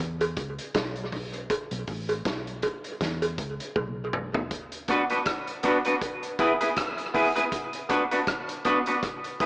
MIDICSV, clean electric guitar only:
0, 0, Header, 1, 2, 480
1, 0, Start_track
1, 0, Tempo, 752823
1, 957, Time_signature, 4, 2, 24, 8
1, 6030, End_track
2, 0, Start_track
2, 0, Title_t, "Clean electric guitar"
2, 0, Program_c, 0, 27
2, 3118, Note_on_c, 0, 59, 66
2, 3121, Note_on_c, 0, 62, 83
2, 3124, Note_on_c, 0, 66, 86
2, 3129, Note_on_c, 0, 71, 94
2, 3196, Note_off_c, 0, 59, 0
2, 3197, Note_off_c, 0, 62, 0
2, 3199, Note_off_c, 0, 66, 0
2, 3201, Note_off_c, 0, 71, 0
2, 3255, Note_on_c, 0, 71, 59
2, 3258, Note_on_c, 0, 66, 57
2, 3263, Note_on_c, 0, 59, 48
2, 3263, Note_on_c, 0, 62, 49
2, 3301, Note_off_c, 0, 71, 0
2, 3302, Note_off_c, 0, 66, 0
2, 3305, Note_off_c, 0, 59, 0
2, 3305, Note_off_c, 0, 62, 0
2, 3592, Note_on_c, 0, 59, 78
2, 3598, Note_on_c, 0, 62, 81
2, 3601, Note_on_c, 0, 66, 82
2, 3606, Note_on_c, 0, 71, 95
2, 3673, Note_off_c, 0, 59, 0
2, 3676, Note_off_c, 0, 62, 0
2, 3677, Note_off_c, 0, 66, 0
2, 3680, Note_off_c, 0, 71, 0
2, 3733, Note_on_c, 0, 71, 56
2, 3738, Note_on_c, 0, 66, 55
2, 3742, Note_on_c, 0, 62, 53
2, 3745, Note_on_c, 0, 59, 41
2, 3780, Note_off_c, 0, 71, 0
2, 3782, Note_off_c, 0, 66, 0
2, 3784, Note_off_c, 0, 62, 0
2, 3786, Note_off_c, 0, 59, 0
2, 4074, Note_on_c, 0, 59, 86
2, 4078, Note_on_c, 0, 64, 99
2, 4082, Note_on_c, 0, 68, 91
2, 4086, Note_on_c, 0, 71, 94
2, 4154, Note_off_c, 0, 59, 0
2, 4156, Note_off_c, 0, 64, 0
2, 4158, Note_off_c, 0, 68, 0
2, 4160, Note_off_c, 0, 71, 0
2, 4212, Note_on_c, 0, 71, 56
2, 4215, Note_on_c, 0, 68, 52
2, 4219, Note_on_c, 0, 64, 49
2, 4223, Note_on_c, 0, 59, 45
2, 4259, Note_off_c, 0, 71, 0
2, 4261, Note_off_c, 0, 68, 0
2, 4263, Note_off_c, 0, 64, 0
2, 4265, Note_off_c, 0, 59, 0
2, 4552, Note_on_c, 0, 59, 81
2, 4558, Note_on_c, 0, 64, 71
2, 4561, Note_on_c, 0, 68, 85
2, 4565, Note_on_c, 0, 71, 73
2, 4633, Note_off_c, 0, 59, 0
2, 4636, Note_off_c, 0, 64, 0
2, 4638, Note_off_c, 0, 68, 0
2, 4640, Note_off_c, 0, 71, 0
2, 4690, Note_on_c, 0, 71, 68
2, 4693, Note_on_c, 0, 68, 61
2, 4698, Note_on_c, 0, 64, 46
2, 4701, Note_on_c, 0, 59, 43
2, 4739, Note_off_c, 0, 71, 0
2, 4740, Note_off_c, 0, 68, 0
2, 4742, Note_off_c, 0, 64, 0
2, 4744, Note_off_c, 0, 59, 0
2, 5031, Note_on_c, 0, 59, 72
2, 5035, Note_on_c, 0, 62, 77
2, 5041, Note_on_c, 0, 66, 72
2, 5042, Note_on_c, 0, 71, 84
2, 5113, Note_off_c, 0, 59, 0
2, 5115, Note_off_c, 0, 62, 0
2, 5118, Note_off_c, 0, 66, 0
2, 5118, Note_off_c, 0, 71, 0
2, 5174, Note_on_c, 0, 71, 57
2, 5178, Note_on_c, 0, 66, 58
2, 5182, Note_on_c, 0, 62, 58
2, 5183, Note_on_c, 0, 59, 46
2, 5220, Note_off_c, 0, 71, 0
2, 5223, Note_off_c, 0, 66, 0
2, 5224, Note_off_c, 0, 62, 0
2, 5225, Note_off_c, 0, 59, 0
2, 5516, Note_on_c, 0, 59, 77
2, 5520, Note_on_c, 0, 62, 77
2, 5523, Note_on_c, 0, 66, 82
2, 5527, Note_on_c, 0, 71, 81
2, 5595, Note_off_c, 0, 59, 0
2, 5597, Note_off_c, 0, 62, 0
2, 5599, Note_off_c, 0, 66, 0
2, 5601, Note_off_c, 0, 71, 0
2, 5657, Note_on_c, 0, 71, 54
2, 5662, Note_on_c, 0, 66, 52
2, 5664, Note_on_c, 0, 62, 47
2, 5669, Note_on_c, 0, 59, 47
2, 5702, Note_off_c, 0, 71, 0
2, 5705, Note_off_c, 0, 66, 0
2, 5706, Note_off_c, 0, 62, 0
2, 5708, Note_off_c, 0, 59, 0
2, 5997, Note_on_c, 0, 59, 77
2, 6002, Note_on_c, 0, 64, 78
2, 6003, Note_on_c, 0, 68, 88
2, 6009, Note_on_c, 0, 71, 102
2, 6030, Note_off_c, 0, 59, 0
2, 6030, Note_off_c, 0, 64, 0
2, 6030, Note_off_c, 0, 68, 0
2, 6030, Note_off_c, 0, 71, 0
2, 6030, End_track
0, 0, End_of_file